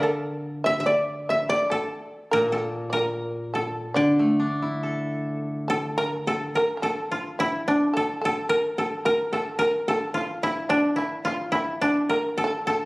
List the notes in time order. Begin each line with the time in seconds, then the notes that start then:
Already playing: D3 A#4 D5 E5 F5
0.00 A4 A#4
0.64 E5
0.80 E5
0.86 D5
1.29 E5
1.49 D5
1.70 A4
2.31 A#2 A#4
2.48 A4 A#4
2.55 A4
2.90 A#4 D5
3.54 A4
3.94 D3 D5
4.19 A3
4.40 D4
4.62 E4
4.83 A4
5.68 A4
5.98 A#4
6.27 A4
6.55 A#4
6.77 A#4
6.82 A4
7.12 F4
7.39 E4
7.68 D4
7.94 A4
8.21 A4
8.49 A#4
8.78 A4
9.05 A#4
9.33 A4
9.59 A#4
9.88 A4
10.14 F4
10.43 E4
10.69 D4
10.96 E4
11.25 F4
11.52 E4
11.81 D4
12.09 A#4
12.38 A4
12.44 A4
12.67 A4